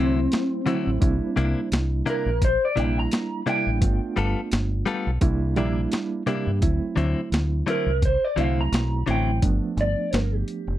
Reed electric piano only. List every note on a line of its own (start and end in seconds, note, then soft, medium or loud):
0.00 0.60 F#3 medium
0.00 0.60 A3 medium
0.00 0.60 C4 medium
0.00 0.61 E4 medium
0.65 0.98 F#3 medium
0.65 0.98 A3 medium
0.65 0.98 C4 medium
0.65 0.99 E4 medium
1.00 2.30 G3 medium
1.00 2.30 A#3 medium
1.00 2.30 D4 medium
1.00 2.30 E4 medium
2.76 3.41 G3 medium
2.76 3.41 A#3 medium
2.76 3.41 D4 medium
2.76 3.41 E4 medium
3.46 3.79 G3 medium
3.46 3.79 A#3 medium
3.46 3.79 D4 medium
3.46 3.79 E4 medium
3.81 5.10 A3 medium
3.81 5.10 B3 medium
3.81 5.11 D4 medium
3.81 5.11 F4 medium
5.21 5.54 G3 medium
5.21 5.54 A#3 medium
5.21 5.54 D4 medium
5.21 5.55 E4 loud
5.57 6.21 G3 medium
5.57 6.21 A#3 medium
5.57 6.22 D4 medium
5.57 6.22 E4 medium
6.26 6.59 G3 medium
6.26 6.59 A#3 medium
6.26 6.60 D4 medium
6.26 6.60 G4 medium
6.61 7.91 F#3 medium
6.61 7.91 A3 medium
6.61 7.91 C4 medium
6.61 7.91 E4 loud
8.37 9.02 F#3 medium
8.37 9.02 A3 medium
8.37 9.02 C4 medium
8.37 9.02 E4 medium
9.07 9.40 F#3 medium
9.07 9.40 A3 medium
9.07 9.40 C4 medium
9.07 9.40 E4 medium
9.42 10.71 F3 medium
9.42 10.71 A3 medium
9.42 10.72 B3 medium
9.42 10.72 D4 medium